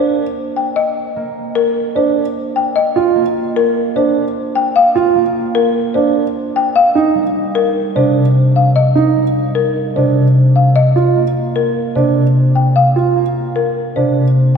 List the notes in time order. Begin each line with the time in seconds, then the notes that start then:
Already playing: A#3 D4 C5
0.56 G5
0.76 D#5
1.16 A#3
1.55 A#4
1.95 D4 C5
2.56 G5
2.76 D#5
2.96 F4
3.15 A#3
3.56 A#4
3.96 D4 C5
4.55 G5
4.76 F5
4.95 F4
5.15 A#3
5.55 A#4
5.94 D4 C5
6.56 G5
6.76 F5
6.95 D#4
7.15 G3
7.55 A#4
7.96 C3 D4 C5
8.56 F5
8.76 D#5
8.95 D#4
9.17 G3
9.55 A#4
9.96 C3 D4 C5
10.56 F5
10.76 D#5
10.96 F4
11.16 A#3
11.56 A#4
11.95 C3 D4 C5
12.55 G5
12.76 F5
12.96 F4
13.16 A#3
13.56 A#4
13.96 C3 D4 C5